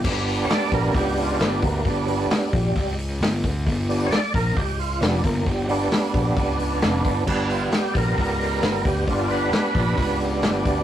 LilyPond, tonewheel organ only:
<<
  \new Staff \with { instrumentName = "Tonewheel organ" } { \time 4/4 \key g \major \tempo 4 = 133 r4 <cis'' d''>8 bes'8 g'8 f'8 d'8 bes8 | r8 <fis g>2 r4. | r4 <cis'' d''>8 bes'8 g'8 f'8 r8 bes8 | g8 fis8 r2. |
r8 f'8 g'8 <a' bes'>4. bes'8 g'8 | f'8 b'2 r4. | }
  \new Staff \with { instrumentName = "Tonewheel organ" } { \time 4/4 \key g \major <g b d'>1 | <g b d'>4. r2 r8 | r8 <g b d'>8 r2 <g b d'>8 r8 | r8 <g b d'>2.~ <g b d'>8 |
<g b d'>1 | <g b d'>1 | }
>>